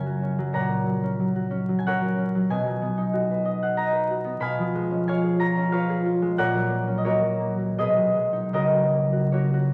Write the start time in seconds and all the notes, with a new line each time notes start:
Already playing: F#2 C#3 F#3 C#4 A#4 C#5 F#5 G#5 A#5 C#6
0.06 F#4
0.23 C#4
0.38 F#3
0.53 A#2 C#5 F#5 A#5
0.68 A#3
0.86 F#3
1.03 C#4
1.20 F#3
1.36 F#4
1.51 C#4
1.69 F#3
1.79 G#5
1.86 C#4 A#4 C#5 F#5
2.01 F#4
2.18 C#4
2.35 F#3
2.50 B2 G#5
2.66 F#3
2.82 B3
2.98 D#4
3.13 F#4
3.31 B4
3.45 D#5
3.63 F#5
3.77 D#5 A#5
3.93 B4
4.10 F#4
4.24 B3
4.40 B2 F5 G#5 B5
4.58 F3
4.75 G#3
4.91 C#4
5.08 F4 C#5 F5 G#5
5.24 G#4
5.39 F4 A#5
5.57 C#4
5.72 F4 B4 C#5 F5
5.90 G#4
6.06 F4
6.22 G#3
6.38 A#2 A#4 C#5 F#5
6.54 F#3
6.70 A#3
6.87 C#4
6.98 D#5
7.05 A#3 F#4 A#4 C#5
7.23 F#3
7.40 A#3
7.58 F#3
7.78 B2 G#4 B4 D#5
7.97 F#3
8.14 G#3
8.33 D#4
8.53 C#3 F#4 A#4 D#5
8.74 F#3
8.93 A#3
9.13 F#4
9.32 A#3 F#4 A#4 C#5
9.54 F#4